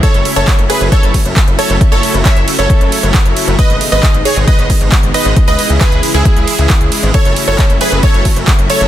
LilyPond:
<<
  \new Staff \with { instrumentName = "Grand piano" } { \time 4/4 \key fis \dorian \tempo 4 = 135 cis''8 r16 cis''8 r16 b'16 r16 cis''8 r4 cis''8 | r16 cis''8 r16 e''8 r16 cis''2 r16 | dis''8 r16 dis''8 r16 cis''16 r16 dis''8 r4 dis''8 | r16 dis''8 r16 b'8 r16 gis'2 r16 |
cis''8 r16 cis''8 r16 b'16 r16 cis''8 r4 cis''8 | }
  \new Staff \with { instrumentName = "Supersaw synth" } { \time 4/4 \key fis \dorian <a' cis''>8 r16 <a' cis''>8 r16 <gis' b'>16 r16 <a' cis''>8 r4 <a' cis''>8 | r16 <a' cis''>8 r16 <cis'' e''>8 r16 <a' cis''>2 r16 | <b' dis''>8 r16 <b' dis''>8 r16 <gis' cis''>16 r16 <b' dis''>8 r4 <b' dis''>8 | r16 <b' dis''>8 r16 <gis' b'>8 r16 <e' gis'>2 r16 |
<a' cis''>8 r16 <a' cis''>8 r16 <gis' b'>16 r16 <a' cis''>8 r4 <a' cis''>8 | }
  \new Staff \with { instrumentName = "Analog synth pad" } { \clef bass \time 4/4 \key fis \dorian <cis fis a e'>8 <cis fis a e'>8 <cis fis a e'>8 <cis fis a e'>16 <cis fis a e'>16 <cis fis a e'>8 r16 <cis fis a e'>8 <cis fis a e'>16 <cis fis a e'>8 | <cis fis a e'>8 <cis fis a e'>8 <cis fis a e'>8 <cis fis a e'>16 <cis fis a e'>16 <cis fis a e'>8 r16 <cis fis a e'>8 <cis fis a e'>16 <cis fis a e'>8 | <b, dis gis dis'>8 <b, dis gis dis'>8 <b, dis gis dis'>8 <b, dis gis dis'>16 <b, dis gis dis'>16 <b, dis gis dis'>8 r16 <b, dis gis dis'>8 <b, dis gis dis'>16 <b, dis gis dis'>8 | <cis e gis e'>8 <cis e gis e'>8 <cis e gis e'>8 <cis e gis e'>16 <cis e gis e'>16 <cis e gis e'>8 r16 <cis e gis e'>8 <cis e gis e'>16 <cis e gis e'>8 |
<cis fis a e'>8 <cis fis a e'>8 <cis fis a e'>8 <cis fis a e'>16 <cis fis a e'>16 <cis fis a e'>8 r16 <cis fis a e'>8 <cis fis a e'>16 <cis fis a e'>8 | }
  \new Staff \with { instrumentName = "Analog synth bass" } { \clef bass \time 4/4 \key fis \dorian r16 fis,,16 r16 fis,,16 r16 fis,,16 r16 fis,,16 r16 fis,,16 r16 fis,,16 r16 fis,,16 r16 fis,,16 | r16 fis,,16 r16 fis,,16 r16 fis,,16 r16 fis,,16 r16 fis,,16 r16 fis,,16 r16 fis,,16 r16 fis,,16 | r16 gis,,16 r16 gis,,16 r16 gis,,16 r16 gis,,16 r16 gis,,16 r16 gis,,16 r16 gis,,16 r16 gis,,16 | r16 cis,16 r16 cis,16 r16 cis,16 r16 cis,16 r16 cis,16 r16 cis,16 r16 cis,16 r16 gis,,16 |
r16 fis,,16 r16 fis,,16 r16 fis,,16 r16 fis,,16 r16 fis,,16 r16 fis,,16 r16 fis,,16 r16 fis,,16 | }
  \new DrumStaff \with { instrumentName = "Drums" } \drummode { \time 4/4 <hh bd cymr>16 hh16 <hho cymr>16 hh16 <hc hh bd cymr>16 hh16 <hho cymr>16 hh16 <hh bd cymr>16 hh16 <hho bd cymr>16 hh16 <hc hh bd cymr>16 hh16 <hho cymr>16 hh16 | <hh bd cymr>16 hh16 <hho cymr>16 hh16 <hc hh bd cymr>16 hh16 <hho cymr>16 hh16 <hh bd cymr>16 hh16 <hho cymr>16 hh16 <hc hh bd cymr>16 hh16 <hho cymr>16 hh16 | <hh bd cymr>16 hh16 <hho cymr>16 hh16 <hc hh bd cymr>16 hh16 <hho cymr>16 hh16 <hh bd cymr>16 hh16 <hho bd cymr>16 hh16 <hc hh bd cymr>16 hh16 <hho cymr>16 hh16 | <hh bd cymr>16 hh16 <hho cymr>16 hh16 <hc hh bd cymr>16 hh16 <hho cymr>16 hh16 <hh bd cymr>16 hh16 <hho cymr>16 hh16 <hc hh bd cymr>16 hh16 <hho cymr>16 hh16 |
<hh bd cymr>16 hh16 <hho cymr>16 hh16 <hc hh bd cymr>16 hh16 <hho cymr>16 hh16 <hh bd cymr>16 hh16 <hho bd cymr>16 hh16 <hc hh bd cymr>16 hh16 <hho cymr>16 hh16 | }
>>